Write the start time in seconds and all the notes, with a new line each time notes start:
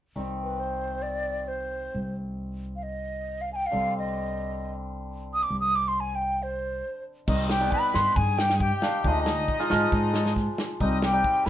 0.16 C2 D#3 G3 C4
0.43 B4
0.60 C5
1.02 D5
1.48 C5
1.94 C2
2.76 F5
2.83 D#5
3.41 F5
3.53 G5 G#5
3.66 F5
3.71 C2 D3 G3 C4
3.98 D#5
5.34 D#6
5.43 D6
5.50 C2
5.60 D#6
5.75 D6
5.88 C6
6.00 G#5
6.15 G5
6.43 C5
7.27 C2 D#3 G3 C4 D#4 D#5, kick, crash
7.50 G4 G5, snare
7.60 D#3 G3 B3
7.71 B4 B5, kick
7.94 G2 C6, snare
8.16 G2 G#4 G#5, kick
8.38 G4 G5, snare
8.49 snare
8.54 G#4
8.59 G4 G5, kick
8.81 D#3 G3 D4 F5, snare
9.04 D2 F3 G#3 D4 D#4 D#5, kick
9.26 snare
9.48 kick
9.59 G#3 F4, snare
9.70 G#2 F3 G#3 F4, snare
9.92 G#2, kick, snare
10.14 snare
10.26 snare
10.36 kick, snare
10.58 snare
10.80 C2 G3 C4 D#4 D#5, kick
11.02 G4 G5, snare
11.12 G3 C4 D#4
11.24 kick
11.45 B5, snare